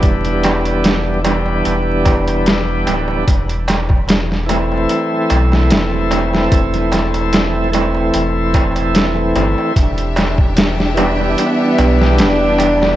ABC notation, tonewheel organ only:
X:1
M:4/4
L:1/8
Q:"Swing 16ths" 1/4=74
K:Em
V:1 name="Tonewheel organ"
[E,G,B,D]3 [E,G,B,D]4- [E,G,B,D] | z3 [E,A,CE]4- [E,A,CE]- | [E,A,CE]3 [E,A,CE]4- [E,A,CE] | z3 [E,G,B,D]4- [E,G,B,D] |]